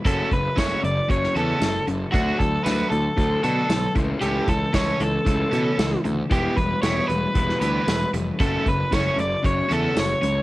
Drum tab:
HH |x-x-x-x-x-x-x-x-|x-x-x-x-x-x-x-x-|x-x-x-x-x-x-x-x-|x-x-x-x-x-x-x-x-|
TB |----x-------x---|----x-------x---|----x-------x---|----x-------x---|
SD |----o----o--o---|----o-------o---|----o-------o---|----o----o--o---|
BD |o-o-o---o-------|o-o-----o-----o-|--o-o---o-------|o-o-----o-------|

HH |x-x-x-x-x-x-x-x-|
TB |----x-------x---|
SD |----o-------o---|
BD |o-o-o---o-------|